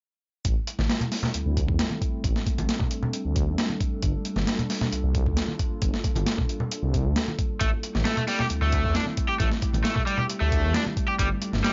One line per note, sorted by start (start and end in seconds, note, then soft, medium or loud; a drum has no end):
0.44 0.55 A1 medium
0.44 7.57 G3 medium
0.44 3.99 A3 medium
0.44 3.99 C4 medium
0.44 2.22 E4 medium
0.44 9.36 A4 medium
0.44 kick loud
0.44 closed hi-hat medium
0.67 closed hi-hat medium
0.79 0.88 A1 medium
0.79 snare soft
0.79 high conga medium
0.89 snare loud
0.89 closed hi-hat medium
1.01 closed hi-hat soft
1.01 low conga medium
1.12 snare soft
1.12 open hi-hat medium
1.23 snare medium
1.23 low conga loud
1.34 1.44 D2 soft
1.34 closed hi-hat medium
1.46 1.70 D2 loud
1.57 kick medium
1.57 closed hi-hat medium
1.68 1.77 E2 medium
1.68 kick medium
1.79 snare loud
1.79 closed hi-hat medium
1.90 high conga medium
2.02 kick medium
2.02 closed hi-hat medium
2.24 2.34 A1 medium
2.24 7.57 D4 medium
2.24 kick loud
2.24 closed hi-hat medium
2.36 snare soft
2.46 kick medium
2.46 closed hi-hat medium
2.58 2.67 A1 medium
2.58 closed hi-hat soft
2.58 high conga medium
2.69 snare loud
2.69 closed hi-hat medium
2.80 kick medium
2.80 low conga medium
2.91 closed hi-hat medium
3.03 low conga medium
3.13 closed hi-hat medium
3.25 3.49 D2 loud
3.36 kick medium
3.36 closed hi-hat medium
3.47 3.56 E2 medium
3.58 snare loud
3.58 closed hi-hat medium
3.70 high conga medium
3.81 kick medium
3.81 closed hi-hat medium
4.02 4.13 G1 loud
4.02 7.58 A#3 medium
4.02 7.57 F4 medium
4.02 kick loud
4.02 closed hi-hat medium
4.25 closed hi-hat medium
4.36 4.46 G1 medium
4.36 snare soft
4.36 high conga medium
4.47 snare loud
4.47 closed hi-hat medium
4.59 closed hi-hat soft
4.59 low conga medium
4.70 snare soft
4.70 open hi-hat medium
4.81 snare medium
4.81 low conga loud
4.92 5.02 C2 soft
4.92 closed hi-hat medium
5.04 5.28 C2 loud
5.15 kick loud
5.15 closed hi-hat medium
5.26 5.35 D2 medium
5.26 kick medium
5.37 snare loud
5.37 closed hi-hat medium
5.48 high conga medium
5.59 kick medium
5.59 closed hi-hat medium
5.82 5.92 G1 loud
5.82 kick loud
5.82 closed hi-hat medium
5.94 snare soft
6.04 kick medium
6.04 closed hi-hat medium
6.16 6.25 G1 medium
6.16 closed hi-hat soft
6.16 high conga medium
6.26 snare loud
6.26 closed hi-hat medium
6.38 kick medium
6.38 low conga medium
6.49 closed hi-hat medium
6.60 low conga medium
6.72 closed hi-hat medium
6.83 7.06 C2 loud
6.94 kick medium
6.94 closed hi-hat medium
7.05 7.14 D2 medium
7.16 snare loud
7.16 closed hi-hat medium
7.28 high conga medium
7.39 kick medium
7.39 closed hi-hat medium
7.60 7.71 A1 medium
7.60 11.73 G3 medium
7.60 11.15 A3 medium
7.60 7.68 A3 medium
7.60 11.15 C4 medium
7.60 11.15 E4 medium
7.60 kick loud
7.60 closed hi-hat medium
7.83 closed hi-hat medium
7.95 8.04 A1 medium
7.95 snare soft
7.95 high conga medium
8.05 8.16 A3 medium
8.05 snare loud
8.05 closed hi-hat medium
8.17 8.22 A3 loud
8.17 closed hi-hat soft
8.17 low conga medium
8.28 8.39 G3 medium
8.28 snare soft
8.28 open hi-hat medium
8.39 8.44 G4 medium
8.39 snare medium
8.39 low conga medium
8.50 8.60 D2 soft
8.50 closed hi-hat medium
8.62 8.86 D2 loud
8.62 8.94 A3 medium
8.72 kick loud
8.72 closed hi-hat medium
8.84 8.94 E2 medium
8.84 kick medium
8.95 9.03 D4 medium
8.95 snare loud
8.95 closed hi-hat medium
9.06 high conga medium
9.17 kick medium
9.17 closed hi-hat medium
9.29 9.33 G4 medium
9.39 9.50 A1 loud
9.39 9.47 A3 medium
9.39 11.17 G4 medium
9.39 kick loud
9.39 closed hi-hat medium
9.52 snare soft
9.62 kick medium
9.62 closed hi-hat medium
9.74 9.83 A1 medium
9.74 closed hi-hat soft
9.74 high conga medium
9.84 9.95 A3 medium
9.84 snare loud
9.84 closed hi-hat medium
9.96 10.00 A3 medium
9.96 kick medium
9.96 low conga medium
10.06 10.18 G3 medium
10.06 closed hi-hat medium
10.18 10.23 G4 medium
10.18 low conga medium
10.30 closed hi-hat medium
10.40 10.65 D2 loud
10.40 10.73 A3 medium
10.52 kick medium
10.52 closed hi-hat medium
10.64 10.73 E2 medium
10.74 10.82 D4 medium
10.74 snare loud
10.74 closed hi-hat medium
10.86 high conga medium
10.97 kick medium
10.97 closed hi-hat medium
11.08 11.12 G4 medium
11.18 11.29 G1 loud
11.18 11.27 G3 medium
11.18 11.73 A#3 medium
11.18 11.73 D4 medium
11.18 11.73 F4 medium
11.18 11.73 A4 medium
11.18 kick loud
11.18 closed hi-hat medium
11.42 closed hi-hat medium
11.53 11.62 G1 medium
11.53 snare soft
11.53 high conga medium
11.64 11.73 G3 medium
11.64 snare loud
11.64 closed hi-hat medium